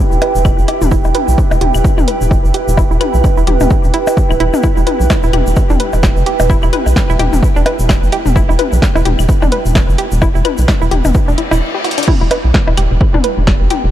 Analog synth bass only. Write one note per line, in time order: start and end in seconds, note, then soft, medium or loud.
0.12 0.19 E1 medium
0.35 0.52 E1 medium
0.58 0.66 F#1 loud
0.82 0.98 E1 loud
1.05 1.12 E1 loud
1.28 1.36 B1 medium
1.51 1.59 E1 loud
1.61 1.71 E1 medium
1.75 1.82 E1 medium
1.98 2.05 E1 medium
2.21 2.38 E1 medium
2.44 2.52 F#1 loud
2.68 2.84 E1 loud
2.91 2.98 E1 loud
3.14 3.22 B1 medium
3.37 3.45 E1 medium
3.47 3.57 E1 loud
3.60 3.68 E1 loud
3.84 3.91 E1 medium
4.30 4.38 D1 medium
4.40 4.50 E1 medium
4.77 4.84 E1 loud
5.00 5.08 B1 medium
5.23 5.31 E1 loud
5.33 5.43 E1 medium
5.47 5.54 E1 loud
5.70 5.77 E1 medium
5.93 6.10 E1 medium
6.17 6.24 F#1 loud
6.40 6.56 E1 loud
6.63 6.70 E1 loud
6.86 6.94 B1 medium
7.10 7.17 E1 loud
7.19 7.29 E1 medium
7.33 7.40 E1 loud
7.56 7.63 E1 medium
7.79 7.96 E1 medium
8.03 8.10 F#1 medium
8.26 8.42 E1 loud
8.49 8.56 E1 loud
8.73 8.80 B1 medium
8.96 9.03 E1 loud
9.06 9.16 E1 medium
9.19 9.26 E1 loud
9.42 9.49 E1 medium
9.66 9.82 E1 medium
9.89 9.96 F#1 loud
10.12 10.28 E1 loud
10.35 10.43 E1 loud
10.59 10.66 B1 medium
10.82 10.89 E1 loud
10.92 11.02 E1 medium
11.05 11.12 E1 medium
11.28 11.36 E1 medium
11.52 11.61 E1 medium
12.21 12.29 E1 loud
12.44 12.52 B1 medium
12.68 12.75 E1 medium
12.78 12.88 E1 medium
12.91 12.98 E1 loud
13.14 13.22 E1 medium
13.37 13.54 E1 medium
13.61 13.68 F#1 loud
13.84 13.91 E1 loud